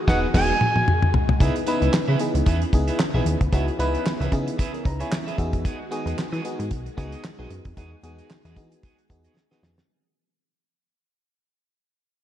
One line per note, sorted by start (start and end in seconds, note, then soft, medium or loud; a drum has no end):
0.00 1.36 D#3 medium
0.00 1.36 G#3 medium
0.00 1.36 F#4 medium
0.07 0.26 E1 medium
0.07 0.26 B3 loud
0.07 0.26 D#4 loud
0.07 0.26 F#4 loud
0.07 0.27 F#4 medium
0.07 0.26 G#4 loud
0.07 0.27 G#4 loud
0.07 0.26 D#5 loud
0.07 0.19 F#5 medium
0.07 kick loud
0.07 snare loud
0.34 0.53 E1 loud
0.34 0.53 B3 loud
0.34 0.53 D#4 medium
0.34 0.53 F#4 loud
0.34 0.53 G#4 loud
0.34 0.53 D#5 medium
0.34 1.10 G#5 loud
0.34 kick loud
0.34 snare loud
0.34 crash medium
0.61 mid tom medium
0.76 mid tom medium
0.88 mid tom medium
1.02 mid tom medium
1.14 floor tom loud
1.29 floor tom loud
1.40 1.50 C#2 loud
1.40 5.35 C#3 medium
1.40 5.35 E3 medium
1.40 1.58 B3 medium
1.40 5.35 B3 medium
1.40 1.58 D#4 medium
1.40 1.58 E4 medium
1.40 1.58 G#4 medium
1.40 1.55 B4 medium
1.40 1.54 E5 medium
1.40 kick loud
1.40 closed hi-hat medium
1.55 muted clean electric guitar stroke soft
1.55 closed hi-hat soft
1.66 2.01 B3 loud
1.66 2.01 D#4 medium
1.66 2.01 E4 medium
1.66 1.81 G#4 medium
1.66 1.81 B4 medium
1.66 2.02 B4 loud
1.66 1.80 E5 medium
1.66 closed hi-hat medium
1.81 1.89 C#2 medium
1.81 1.92 G#4 medium
1.81 1.92 B4 medium
1.81 1.93 E5 medium
1.81 closed hi-hat soft
1.94 snare loud
1.94 clap medium
2.08 2.16 C#3 loud
2.08 2.18 G#4 medium
2.08 2.19 B4 medium
2.08 2.19 E5 medium
2.19 2.54 B3 medium
2.19 2.54 D#4 medium
2.19 2.54 E4 medium
2.19 2.54 G#4 medium
2.19 muted clean electric guitar stroke soft
2.19 closed hi-hat medium
2.34 2.42 C#2 medium
2.34 muted clean electric guitar stroke soft
2.34 closed hi-hat medium
2.46 2.64 E2 loud
2.46 2.64 G#4 loud
2.46 2.61 B4 medium
2.46 2.60 E5 medium
2.46 kick loud
2.46 closed hi-hat medium
2.61 muted clean electric guitar stroke medium
2.61 closed hi-hat soft
2.73 2.91 C#2 medium
2.73 2.98 B3 medium
2.73 2.98 D#4 medium
2.73 2.98 E4 medium
2.73 2.99 G#4 loud
2.73 muted clean electric guitar stroke soft
2.73 kick loud
2.73 closed hi-hat medium
2.87 2.98 G#4 medium
2.87 2.99 B4 medium
2.87 2.99 E5 medium
2.87 closed hi-hat soft
2.99 muted clean electric guitar stroke soft
2.99 snare loud
2.99 clap loud
3.14 3.22 B1 medium
3.14 3.39 B3 medium
3.14 3.39 D#4 medium
3.14 3.39 E4 medium
3.14 3.40 G#4 medium
3.14 3.25 G#4 medium
3.14 3.25 B4 medium
3.14 3.26 E5 medium
3.26 3.36 D#2 medium
3.26 muted clean electric guitar stroke soft
3.26 closed hi-hat medium
3.41 3.49 D2 medium
3.41 muted clean electric guitar stroke medium
3.41 kick loud
3.41 closed hi-hat medium
3.52 3.71 C#2 loud
3.52 3.70 B3 medium
3.52 3.71 D#4 medium
3.52 3.71 E4 medium
3.52 3.71 F#4 medium
3.52 3.70 G#4 medium
3.52 3.67 B4 medium
3.52 3.66 E5 medium
3.52 kick loud
3.52 closed hi-hat medium
3.68 muted clean electric guitar stroke soft
3.68 closed hi-hat soft
3.79 3.97 C#2 loud
3.79 4.13 B3 loud
3.79 4.13 D#4 medium
3.79 4.14 E4 medium
3.79 3.93 G#4 medium
3.79 3.93 B4 medium
3.79 4.14 B4 loud
3.79 3.92 E5 medium
3.79 closed hi-hat medium
3.94 4.04 G#4 medium
3.94 4.05 B4 medium
3.94 4.05 E5 medium
3.94 closed hi-hat soft
4.06 muted clean electric guitar stroke soft
4.06 snare loud
4.06 clap medium
4.20 4.28 C#2 loud
4.20 4.31 G#4 medium
4.20 4.31 B4 medium
4.20 4.32 E5 medium
4.20 closed hi-hat soft
4.32 4.50 C#3 medium
4.32 4.67 B3 loud
4.32 4.59 D#4 medium
4.32 4.59 E4 medium
4.32 4.59 G#4 loud
4.32 muted clean electric guitar stroke soft
4.32 kick medium
4.32 closed hi-hat medium
4.47 muted clean electric guitar stroke medium
4.47 closed hi-hat medium
4.58 4.76 G#4 medium
4.58 4.73 B4 medium
4.58 4.72 E5 medium
4.58 kick loud
4.58 closed hi-hat loud
4.73 4.85 C#4 medium
4.73 4.85 A#4 medium
4.73 muted clean electric guitar stroke medium
4.73 closed hi-hat soft
4.85 5.03 C#2 loud
4.85 5.00 D#4 medium
4.85 5.00 B4 medium
4.85 4.99 A#5 medium
4.85 muted clean electric guitar stroke medium
4.85 kick loud
4.85 closed hi-hat medium
5.00 5.26 E4 medium
5.00 5.11 G#4 medium
5.00 5.11 B4 medium
5.00 5.25 C#5 medium
5.00 5.11 E5 medium
5.00 5.11 G#5 medium
5.00 closed hi-hat medium
5.12 5.37 G#5 medium
5.12 snare loud
5.12 clap loud
5.26 5.37 G#4 medium
5.26 5.38 G#4 medium
5.26 5.38 B4 medium
5.26 5.39 E5 medium
5.26 5.37 E5 medium
5.26 closed hi-hat soft
5.38 5.66 E2 medium
5.38 9.85 D#3 medium
5.38 9.85 G#3 medium
5.38 5.82 B3 loud
5.38 5.82 D#4 medium
5.38 7.48 F#4 medium
5.38 5.82 F#4 medium
5.38 5.82 G#4 loud
5.38 5.63 E5 medium
5.38 muted clean electric guitar stroke soft
5.38 kick medium
5.38 closed hi-hat medium
5.53 muted clean electric guitar stroke soft
5.53 kick loud
5.53 closed hi-hat medium
5.65 5.82 F#4 medium
5.65 5.79 G#4 medium
5.65 5.78 D#5 medium
5.65 kick loud
5.65 closed hi-hat loud
5.79 muted clean electric guitar stroke soft
5.91 6.25 B3 loud
5.91 6.26 D#4 medium
5.91 6.05 F#4 medium
5.91 6.26 F#4 loud
5.91 6.05 G#4 medium
5.91 6.26 G#4 loud
5.91 6.05 D#5 medium
5.91 closed hi-hat medium
6.06 6.14 E2 medium
6.06 6.16 F#4 medium
6.06 6.17 G#4 medium
6.06 6.17 D#5 medium
6.06 closed hi-hat soft
6.17 muted clean electric guitar stroke soft
6.17 snare loud
6.17 clap medium
6.32 6.40 E3 loud
6.32 6.43 F#4 medium
6.32 6.43 G#4 medium
6.32 6.44 D#5 medium
6.32 closed hi-hat soft
6.44 6.79 B3 medium
6.44 6.79 D#4 medium
6.44 6.79 F#4 medium
6.44 6.79 G#4 loud
6.44 muted clean electric guitar stroke soft
6.44 closed hi-hat medium
6.59 6.72 G#2 medium
6.59 muted clean electric guitar stroke soft
6.59 closed hi-hat soft
6.71 6.89 B1 loud
6.71 muted clean electric guitar stroke soft
6.71 kick loud
6.71 closed hi-hat medium
6.86 muted clean electric guitar stroke soft
6.86 closed hi-hat soft
6.97 7.16 C#2 loud
6.97 7.22 B3 medium
6.97 7.23 D#4 medium
6.97 7.12 F#4 medium
6.97 7.23 F#4 medium
6.97 7.23 G#4 loud
6.97 7.12 G#4 medium
6.97 7.11 D#5 loud
6.97 kick loud
6.97 closed hi-hat medium
7.12 7.23 F#4 medium
7.12 7.23 G#4 medium
7.12 7.24 D#5 medium
7.12 closed hi-hat medium
7.24 muted clean electric guitar stroke soft
7.24 snare loud
7.24 clap medium
7.39 7.47 B1 medium
7.39 7.64 B3 medium
7.39 7.64 D#4 medium
7.39 7.64 F#4 medium
7.39 7.49 F#4 medium
7.39 7.50 G#4 medium
7.39 7.64 G#4 medium
7.39 7.50 D#5 medium
7.50 7.60 F#2 medium
7.50 9.87 G#4 loud
7.50 muted clean electric guitar stroke soft
7.50 closed hi-hat medium
7.65 7.73 F2 medium
7.65 muted clean electric guitar stroke medium
7.65 kick loud
7.65 closed hi-hat soft
7.77 7.95 E2 loud
7.77 7.95 B3 medium
7.77 7.95 D#4 medium
7.77 7.95 F#4 medium
7.77 7.92 G#4 medium
7.77 7.95 G#4 medium
7.77 7.91 D#5 medium
7.77 kick loud
7.77 closed hi-hat medium
7.92 muted clean electric guitar stroke soft
8.03 8.21 E2 loud
8.03 8.38 B3 medium
8.03 8.38 D#4 medium
8.03 8.18 F#4 medium
8.03 8.38 F#4 medium
8.03 8.38 G#4 loud
8.03 8.18 G#4 medium
8.03 8.17 D#5 medium
8.03 closed hi-hat medium
8.18 8.30 F#4 medium
8.18 8.30 G#4 medium
8.18 8.30 D#5 medium
8.18 closed hi-hat soft
8.30 muted clean electric guitar stroke soft
8.30 snare loud
8.30 clap medium
8.45 8.58 E2 loud
8.45 8.56 F#4 medium
8.45 8.56 G#4 medium
8.45 8.57 D#5 medium
8.45 closed hi-hat soft
8.56 8.75 E3 loud
8.56 8.91 B3 medium
8.56 8.91 D#4 medium
8.56 8.91 F#4 medium
8.56 8.91 G#4 medium
8.56 muted clean electric guitar stroke soft
8.56 kick loud
8.56 closed hi-hat medium
8.72 muted clean electric guitar stroke medium
8.72 closed hi-hat medium
8.83 9.01 F#4 medium
8.83 8.98 G#4 medium
8.83 8.97 D#5 medium
8.83 kick loud
8.83 closed hi-hat medium
8.98 muted clean electric guitar stroke soft
8.98 closed hi-hat soft
9.09 9.28 E2 medium
9.09 9.35 B3 loud
9.09 9.35 D#4 medium
9.09 9.35 F#4 medium
9.09 9.35 G#4 medium
9.09 muted clean electric guitar stroke soft
9.09 kick loud
9.09 closed hi-hat medium
9.24 9.35 F#4 soft
9.24 9.36 G#4 medium
9.24 9.36 D#5 medium
9.24 closed hi-hat soft
9.36 muted clean electric guitar stroke soft
9.36 snare medium
9.51 9.76 B3 medium
9.51 9.76 D#4 medium
9.51 9.76 F#4 medium
9.51 9.62 F#4 medium
9.51 9.76 G#4 medium
9.51 9.62 G#4 medium
9.51 9.63 D#5 medium
9.51 snare medium
9.63 9.81 F2 medium
9.63 muted clean electric guitar stroke soft
9.63 snare medium
9.78 muted clean electric guitar stroke soft
9.78 snare medium